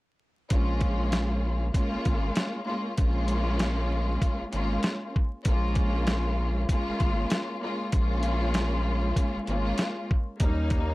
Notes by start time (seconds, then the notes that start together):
0.50 A#1 G#3 A#3 C#4 F4, kick, closed hi-hat
0.81 kick, closed hi-hat
1.12 snare, closed hi-hat
1.74 G#3 A#3 C#4 F4, kick, closed hi-hat
1.93 G#1
2.05 G#1, kick, closed hi-hat
2.35 snare, closed hi-hat
2.66 G#3 A#3 C#4 F4
2.97 A#1 G#3 A#3 C#4 F4, kick, closed hi-hat
3.28 closed hi-hat
3.59 snare, closed hi-hat
4.22 kick, closed hi-hat
4.40 G#1
4.52 G#1 G#3 A#3 C#4 F4, closed hi-hat
4.83 snare, closed hi-hat
5.16 kick
5.45 A#1 G#3 A#3 C#4 F4, kick, closed hi-hat
5.75 kick, closed hi-hat
6.07 snare, closed hi-hat
6.69 G#3 A#3 C#4 F4, kick, closed hi-hat
6.88 G#1
7.00 G#1, kick, closed hi-hat
7.30 snare, closed hi-hat
7.61 G#3 A#3 C#4 F4
7.92 A#1 G#3 A#3 C#4 F4, kick, closed hi-hat
8.23 closed hi-hat
8.54 snare, closed hi-hat
9.16 kick, closed hi-hat
9.35 G#1
9.47 G#1 G#3 A#3 C#4 F4, closed hi-hat
9.78 snare, closed hi-hat
10.11 kick
10.39 D#2 G3 A#3 C#4 D#4, kick, closed hi-hat
10.70 kick, closed hi-hat